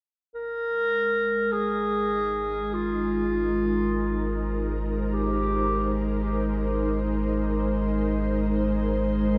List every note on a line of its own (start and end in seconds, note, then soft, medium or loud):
0.33 9.38 G#1 medium
0.33 9.38 G#3 medium
0.33 1.53 A#4 medium
1.52 9.38 D#4 medium
1.52 2.75 G#4 medium
2.74 4.86 F4 medium
2.86 9.38 A#4 medium
3.97 9.38 C5 medium
5.11 6.26 G4 medium